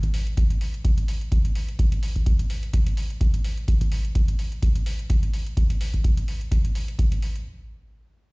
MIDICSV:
0, 0, Header, 1, 2, 480
1, 0, Start_track
1, 0, Tempo, 472441
1, 1819, Time_signature, 4, 2, 24, 8
1, 8455, End_track
2, 0, Start_track
2, 0, Title_t, "Drums"
2, 32, Note_on_c, 9, 36, 55
2, 32, Note_on_c, 9, 42, 48
2, 133, Note_off_c, 9, 36, 0
2, 133, Note_off_c, 9, 42, 0
2, 140, Note_on_c, 9, 46, 101
2, 241, Note_off_c, 9, 46, 0
2, 272, Note_on_c, 9, 42, 33
2, 374, Note_off_c, 9, 42, 0
2, 379, Note_on_c, 9, 36, 114
2, 380, Note_on_c, 9, 42, 71
2, 481, Note_off_c, 9, 36, 0
2, 481, Note_off_c, 9, 42, 0
2, 512, Note_on_c, 9, 42, 49
2, 614, Note_off_c, 9, 42, 0
2, 620, Note_on_c, 9, 46, 86
2, 721, Note_off_c, 9, 46, 0
2, 752, Note_on_c, 9, 42, 33
2, 854, Note_off_c, 9, 42, 0
2, 859, Note_on_c, 9, 36, 110
2, 860, Note_on_c, 9, 42, 75
2, 961, Note_off_c, 9, 36, 0
2, 961, Note_off_c, 9, 42, 0
2, 992, Note_on_c, 9, 42, 48
2, 1093, Note_off_c, 9, 42, 0
2, 1100, Note_on_c, 9, 46, 103
2, 1201, Note_off_c, 9, 46, 0
2, 1232, Note_on_c, 9, 42, 33
2, 1333, Note_off_c, 9, 42, 0
2, 1339, Note_on_c, 9, 36, 115
2, 1339, Note_on_c, 9, 42, 71
2, 1441, Note_off_c, 9, 36, 0
2, 1441, Note_off_c, 9, 42, 0
2, 1471, Note_on_c, 9, 42, 49
2, 1573, Note_off_c, 9, 42, 0
2, 1579, Note_on_c, 9, 46, 90
2, 1681, Note_off_c, 9, 46, 0
2, 1712, Note_on_c, 9, 42, 33
2, 1813, Note_off_c, 9, 42, 0
2, 1819, Note_on_c, 9, 36, 106
2, 1820, Note_on_c, 9, 42, 75
2, 1921, Note_off_c, 9, 36, 0
2, 1921, Note_off_c, 9, 42, 0
2, 1952, Note_on_c, 9, 42, 48
2, 2053, Note_off_c, 9, 42, 0
2, 2059, Note_on_c, 9, 46, 94
2, 2161, Note_off_c, 9, 46, 0
2, 2191, Note_on_c, 9, 36, 55
2, 2192, Note_on_c, 9, 42, 33
2, 2293, Note_off_c, 9, 36, 0
2, 2293, Note_off_c, 9, 42, 0
2, 2299, Note_on_c, 9, 36, 108
2, 2299, Note_on_c, 9, 42, 77
2, 2401, Note_off_c, 9, 36, 0
2, 2401, Note_off_c, 9, 42, 0
2, 2432, Note_on_c, 9, 42, 49
2, 2533, Note_off_c, 9, 42, 0
2, 2539, Note_on_c, 9, 46, 88
2, 2641, Note_off_c, 9, 46, 0
2, 2671, Note_on_c, 9, 42, 35
2, 2773, Note_off_c, 9, 42, 0
2, 2779, Note_on_c, 9, 36, 112
2, 2779, Note_on_c, 9, 42, 75
2, 2880, Note_off_c, 9, 42, 0
2, 2881, Note_off_c, 9, 36, 0
2, 2911, Note_on_c, 9, 42, 51
2, 3013, Note_off_c, 9, 42, 0
2, 3019, Note_on_c, 9, 46, 98
2, 3121, Note_off_c, 9, 46, 0
2, 3152, Note_on_c, 9, 42, 33
2, 3253, Note_off_c, 9, 42, 0
2, 3259, Note_on_c, 9, 36, 112
2, 3260, Note_on_c, 9, 42, 73
2, 3361, Note_off_c, 9, 36, 0
2, 3361, Note_off_c, 9, 42, 0
2, 3392, Note_on_c, 9, 42, 47
2, 3493, Note_off_c, 9, 42, 0
2, 3500, Note_on_c, 9, 46, 84
2, 3601, Note_off_c, 9, 46, 0
2, 3632, Note_on_c, 9, 42, 32
2, 3733, Note_off_c, 9, 42, 0
2, 3739, Note_on_c, 9, 36, 99
2, 3740, Note_on_c, 9, 42, 77
2, 3841, Note_off_c, 9, 36, 0
2, 3841, Note_off_c, 9, 42, 0
2, 3871, Note_on_c, 9, 36, 56
2, 3872, Note_on_c, 9, 42, 52
2, 3973, Note_off_c, 9, 36, 0
2, 3973, Note_off_c, 9, 42, 0
2, 3979, Note_on_c, 9, 46, 97
2, 4081, Note_off_c, 9, 46, 0
2, 4111, Note_on_c, 9, 42, 34
2, 4213, Note_off_c, 9, 42, 0
2, 4219, Note_on_c, 9, 36, 104
2, 4219, Note_on_c, 9, 42, 78
2, 4321, Note_off_c, 9, 36, 0
2, 4321, Note_off_c, 9, 42, 0
2, 4352, Note_on_c, 9, 42, 51
2, 4453, Note_off_c, 9, 42, 0
2, 4459, Note_on_c, 9, 46, 78
2, 4561, Note_off_c, 9, 46, 0
2, 4591, Note_on_c, 9, 42, 35
2, 4693, Note_off_c, 9, 42, 0
2, 4699, Note_on_c, 9, 36, 104
2, 4699, Note_on_c, 9, 42, 79
2, 4801, Note_off_c, 9, 36, 0
2, 4801, Note_off_c, 9, 42, 0
2, 4831, Note_on_c, 9, 42, 51
2, 4933, Note_off_c, 9, 42, 0
2, 4939, Note_on_c, 9, 46, 96
2, 5041, Note_off_c, 9, 46, 0
2, 5072, Note_on_c, 9, 42, 34
2, 5173, Note_off_c, 9, 42, 0
2, 5179, Note_on_c, 9, 36, 109
2, 5180, Note_on_c, 9, 42, 77
2, 5281, Note_off_c, 9, 36, 0
2, 5281, Note_off_c, 9, 42, 0
2, 5312, Note_on_c, 9, 42, 47
2, 5414, Note_off_c, 9, 42, 0
2, 5420, Note_on_c, 9, 46, 81
2, 5522, Note_off_c, 9, 46, 0
2, 5552, Note_on_c, 9, 42, 34
2, 5654, Note_off_c, 9, 42, 0
2, 5659, Note_on_c, 9, 36, 103
2, 5660, Note_on_c, 9, 42, 75
2, 5761, Note_off_c, 9, 36, 0
2, 5761, Note_off_c, 9, 42, 0
2, 5792, Note_on_c, 9, 42, 52
2, 5894, Note_off_c, 9, 42, 0
2, 5900, Note_on_c, 9, 46, 100
2, 6002, Note_off_c, 9, 46, 0
2, 6032, Note_on_c, 9, 36, 57
2, 6032, Note_on_c, 9, 42, 35
2, 6133, Note_off_c, 9, 36, 0
2, 6134, Note_off_c, 9, 42, 0
2, 6140, Note_on_c, 9, 36, 104
2, 6140, Note_on_c, 9, 42, 76
2, 6241, Note_off_c, 9, 36, 0
2, 6242, Note_off_c, 9, 42, 0
2, 6273, Note_on_c, 9, 42, 53
2, 6374, Note_off_c, 9, 42, 0
2, 6381, Note_on_c, 9, 46, 83
2, 6482, Note_off_c, 9, 46, 0
2, 6513, Note_on_c, 9, 42, 37
2, 6615, Note_off_c, 9, 42, 0
2, 6620, Note_on_c, 9, 36, 108
2, 6621, Note_on_c, 9, 42, 79
2, 6721, Note_off_c, 9, 36, 0
2, 6722, Note_off_c, 9, 42, 0
2, 6752, Note_on_c, 9, 42, 53
2, 6854, Note_off_c, 9, 42, 0
2, 6861, Note_on_c, 9, 46, 97
2, 6962, Note_off_c, 9, 46, 0
2, 6993, Note_on_c, 9, 42, 36
2, 7094, Note_off_c, 9, 42, 0
2, 7100, Note_on_c, 9, 36, 113
2, 7101, Note_on_c, 9, 42, 78
2, 7201, Note_off_c, 9, 36, 0
2, 7202, Note_off_c, 9, 42, 0
2, 7232, Note_on_c, 9, 42, 48
2, 7334, Note_off_c, 9, 42, 0
2, 7340, Note_on_c, 9, 46, 85
2, 7442, Note_off_c, 9, 46, 0
2, 7473, Note_on_c, 9, 42, 35
2, 7574, Note_off_c, 9, 42, 0
2, 8455, End_track
0, 0, End_of_file